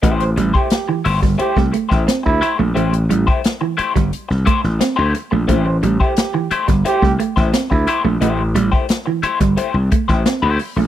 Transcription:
<<
  \new Staff \with { instrumentName = "Trombone" } { \time 4/4 \key a \minor \tempo 4 = 88 r16 c''16 r16 g'8. r8 g'8 r8. e'8 r16 | r1 | r16 c''16 r16 g'8. r8 g'8 r8. e'8 r16 | r1 | }
  \new Staff \with { instrumentName = "Clean electric guitar" } { \time 4/4 \key a \minor <a e' g' c''>16 r8 <a e' g' c''>16 r8 <a e' g' c''>16 r16 <a e' g' c''>16 r8 <a e' g' c''>16 r8 <a e' g' c''>16 r16 | <a e' g' c''>16 r8 <a e' g' c''>16 r8 <a e' g' c''>16 r8. <a e' g' c''>16 r8 <a e' g' c''>16 r8 | <a e' g' c''>16 r8 <a e' g' c''>16 r8 <a e' g' c''>16 r16 <a e' g' c''>16 r8 <a e' g' c''>16 r8 <a e' g' c''>16 r16 | <a e' g' c''>16 r8 <a e' g' c''>16 r8 <a e' g' c''>16 r16 <a e' g' c''>16 r8 <a e' g' c''>16 r16 <a e' g' c''>16 r8 | }
  \new Staff \with { instrumentName = "Clean electric guitar" } { \time 4/4 \key a \minor a16 r16 g16 r8 e16 r16 g16 r16 a16 a16 r16 c'16 r8 a16 | a16 r16 g16 r8 e16 r16 g16 r8 a16 r16 c'16 r8 a16 | a16 r16 g16 r8 e16 r16 g16 r16 a16 a16 r16 c'16 r8 a16 | a16 r16 g16 r8 e16 r16 g16 r8 a16 r16 c'16 r8 a16 | }
  \new Staff \with { instrumentName = "Slap bass" } { \clef bass \time 4/4 \key a \minor a,,8 a,,16 r8. g,,8 r16 c,16 r16 a,,16 r16 d,16 r16 bes,,16 | a,,8 a,,16 r4 g,,16 r16 c,16 r16 a,,16 r16 d,16 r16 bes,,16 | a,,8 a,,16 r4 g,,16 r16 c,16 r16 a,,16 r16 d,16 r16 bes,,16 | a,,8 a,,16 r4 g,,16 r16 c,16 r16 a,,16 r16 d,16 r16 bes,,16 | }
  \new DrumStaff \with { instrumentName = "Drums" } \drummode { \time 4/4 <hh bd>16 hh16 hh16 bd16 <hh sn>8 hho16 <bd sn>16 hh16 <bd sn>16 hh16 <bd sn>16 <hh sn>16 bd16 hh8 | hh16 hh16 hh16 bd16 <hh sn>8 hh16 <hh bd sn>16 hh16 sn16 <hh bd>16 sn16 <hh sn>8 hh8 | <hh bd>8 hh16 bd16 <hh sn>8 hh16 <hh bd sn>16 hh16 <bd sn>16 hh16 <bd sn>16 <hh sn>16 bd16 hh8 | hh8 hh16 bd16 <hh sn>8 hh16 <hh bd sn>16 hh8 <hh bd>16 <bd sn>16 <hh sn>8 hho8 | }
>>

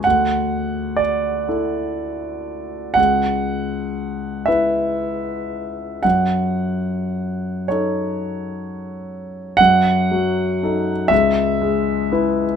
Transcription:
\new Staff \with { instrumentName = "Grand piano" } { \time 6/8 \key fis \minor \tempo 4. = 39 << { fis''4 d''2 | fis''4. e''4. | fis''4. cis''4. | fis''4. e''4. | } \\ { d,4. <e' a'>4. | cis,4. <e' b'>4. | fis,4. <dis' a'>4. | fis,8 fis8 <dis' a'>8 cis,8 gis8 <e' b'>8 | } >> }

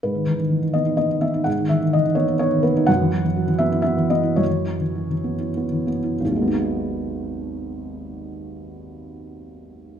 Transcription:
<<
  \new Staff \with { instrumentName = "Felt piano" } { \time 3/4 \key gis \minor \tempo 4 = 109 b'4. dis''8 dis''8 e''8 | fis''8 e''8 dis''8 cis''8 cis''8 b'8 | fis''4. e''8 e''8 dis''8 | cis''2~ cis''8 r8 |
<gis,, dis, fis gis b dis'>2.~ | <gis,, dis, fis gis b dis'>2. | }
  \new Staff \with { instrumentName = "Felt piano" } { \clef bass \time 3/4 \key gis \minor gis,16 dis16 e16 dis16 e16 dis16 b16 dis'16 b16 dis16 b16 dis'16 | gis,16 dis16 e16 dis16 e16 dis16 b16 dis'16 b16 dis16 b16 dis'16 | fis,16 e16 fis16 e16 fis16 e16 b16 e'16 b16 e16 b16 e'16 | fis,16 e16 fis16 e16 fis16 e16 b16 e'16 b16 e16 b16 e'16 |
r2. | r2. | }
>>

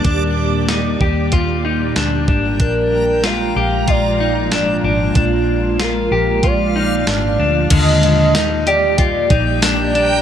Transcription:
<<
  \new Staff \with { instrumentName = "Synth texture" } { \time 4/4 \key ees \major \tempo 4 = 94 r2 r8 g''16 bes''4~ bes''16~ | bes''8. r2 r16 f''4~ | f''2~ f''16 r4. r16 | r4 g''16 bes''2~ bes''16 c''8 | }
  \new Staff \with { instrumentName = "Soft synth lead" } { \time 4/4 \key ees \major r1 | bes'4 f''4 d''4 d''8. r16 | f'4 bes'4 d''4 d''4 | ees''8 ees''4 d''8 d''4 d''4 | }
  \new Staff \with { instrumentName = "Clean electric guitar" } { \time 4/4 \key ees \major d'4 ees'8 g'8 f'8 ees'8 d'8 d'8 | d'4 f'8 g'8 f'8 ees'8 d'8 d'8 | d'4 f'8 g'8 f'8 ees'8 d'8 d'8 | d4 ees'8 g'8 f'8 ees'8 d'8 d'8 | }
  \new Staff \with { instrumentName = "Ambient pad" } { \clef bass \time 4/4 \key ees \major <bes, g bes g' d''>1 | <bes, f aes f'>1~ | <bes, f aes f'>1 | <bes, g bes g'>1 | }
  \new Staff \with { instrumentName = "Fingered electric bass" } { \clef bass \time 4/4 \key ees \major ees,4. ees,4. d,8 aes,,8 | bes,,4. bes,,4. aes,,8 aes,,8 | bes,,4. bes,,4. aes,,8 d,8 | ees,2~ ees,8 bes,,4. | }
  \new DrumStaff \with { instrumentName = "Drums" } \drummode { \time 4/4 <hh bd>4 <hh sn>8 bd8 <hh bd>4 <hh sn>8 bd8 | <hh bd>4 <hh sn>4 <hh bd>4 <hh sn>4 | <hh bd>4 <hh sn>4 <hh bd>4 <hh sn>4 | <cymc hh bd>8 hh8 <hh sn tamb>8 hh8 <hh bd>8 <hh bd>8 <hh sn tamb>8 hh8 | }
>>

